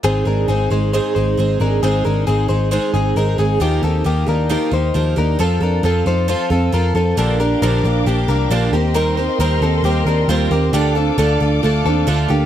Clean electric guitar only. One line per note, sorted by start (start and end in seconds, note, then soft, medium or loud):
0.05 0.27 C4 medium
0.05 0.27 G#4 medium
0.27 0.49 D4 medium
0.27 0.48 A#4 medium
0.49 0.71 C4 medium
0.49 0.71 G#4 medium
0.72 0.93 D#4 medium
0.72 0.92 C5 medium
0.93 1.14 D#4 medium
0.93 1.14 C5 medium
1.15 1.58 D#4 medium
1.15 1.57 C5 medium
1.61 1.83 D4 medium
1.61 1.82 A#4 medium
1.83 2.05 C4 medium
1.83 2.05 G#4 medium
2.05 2.27 D4 medium
2.05 2.27 A#4 medium
2.27 2.50 C4 medium
2.27 2.49 G#4 medium
2.49 2.71 D#4 medium
2.49 2.70 C5 medium
2.72 2.94 D#4 medium
2.72 2.93 C5 medium
2.94 3.17 C4 medium
2.94 3.16 G#4 medium
3.17 3.39 D#4 medium
3.17 3.39 A#4 medium
3.39 3.61 C4 medium
3.39 3.61 G#4 medium
3.62 3.84 A#3 medium
3.62 3.83 G4 medium
3.84 4.06 C4 medium
3.84 4.06 A4 medium
4.06 4.29 A#3 medium
4.06 4.28 G4 medium
4.29 4.51 D4 medium
4.29 4.51 A#4 medium
4.52 4.73 D#4 medium
4.52 4.73 A#4 medium
4.74 5.16 D#4 medium
4.74 5.15 C5 medium
5.18 5.40 D4 medium
5.18 5.40 A#4 medium
5.40 5.63 C4 medium
5.40 5.62 A4 medium
5.63 5.85 D4 medium
5.63 5.84 A#4 medium
5.85 6.07 C4 medium
5.85 6.07 A4 medium
6.07 6.29 D#4 medium
6.07 6.28 C5 medium
6.29 6.52 F4 medium
6.29 6.51 C5 medium
6.52 6.74 C4 medium
6.52 6.73 A4 medium
6.74 6.96 F4 medium
6.74 6.95 A#4 medium
6.96 7.18 C4 medium
6.96 7.17 A4 medium
7.18 7.40 D4 medium
7.18 7.40 A4 medium
7.40 7.62 D4 medium
7.40 7.61 A#4 medium
7.62 8.05 D4 medium
7.62 8.04 A#4 medium
8.07 8.29 A#3 medium
8.07 8.29 G4 medium
8.29 8.52 D4 medium
8.29 8.51 A#4 medium
8.51 8.73 A#3 medium
8.51 8.72 F4 medium
8.73 8.96 A#3 medium
8.73 8.95 G4 medium
8.95 9.17 D#4 medium
8.95 9.17 A#4 loud
9.17 9.40 D#4 medium
9.17 9.40 C5 medium
9.40 9.63 D#4 medium
9.40 9.62 A#4 medium
9.62 9.85 C4 medium
9.62 9.85 A4 medium
9.85 10.07 A#3 medium
9.85 10.06 G4 medium
10.07 10.29 D4 medium
10.07 10.29 A#4 medium
10.29 10.51 A#3 medium
10.29 10.51 F4 medium
10.52 10.74 A#3 medium
10.52 10.72 G4 medium
10.74 10.96 D4 medium
10.74 10.96 G4 loud
10.96 11.19 C4 medium
10.96 11.17 A4 medium
11.18 11.61 D4 medium
11.18 11.60 A4 medium
11.63 11.85 A3 medium
11.63 11.85 F4 medium
11.86 12.08 C4 medium
11.86 12.07 A4 loud
12.08 12.30 A3 medium
12.08 12.30 F4 medium
12.30 12.46 A#3 medium
12.30 12.46 G4 medium